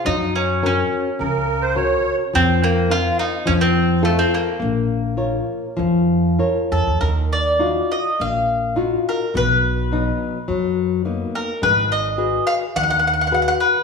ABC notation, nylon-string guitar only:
X:1
M:4/4
L:1/8
Q:1/4=105
K:Bbm
V:1 name="Nylon-string guitar"
G,2 [DGB]2 D,2 [DGB]2 | F,2 [CFB]2 F,2 [CF=A]2 | B,2 [FBd]2 F,2 [FBd]2 | [K:Ebm] E,2 [EFG]2 B,2 [EFG]2 |
=B,,2 [^F,=B,^D]2 F,2 [^A,B,D]2 | A,2 [GAc]2 E,2 [GAc]2 |]